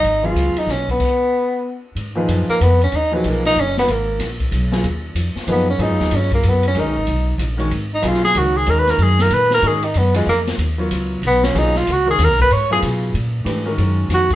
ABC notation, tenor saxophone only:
X:1
M:3/4
L:1/8
Q:"Swing" 1/4=188
K:G#dor
V:1 name="Tenor saxophone"
D E2 D C B,- | B,4- B, z | z3 A, B, C | D F, A, D C B, |
A,2 z4 | z4 B, C | D2 C A, B, C | D4 z2 |
z D E G F G | (3A B A G A B A | G D B, G, A, z | z4 B, C |
D E F G A B | c G z4 | z4 F z |]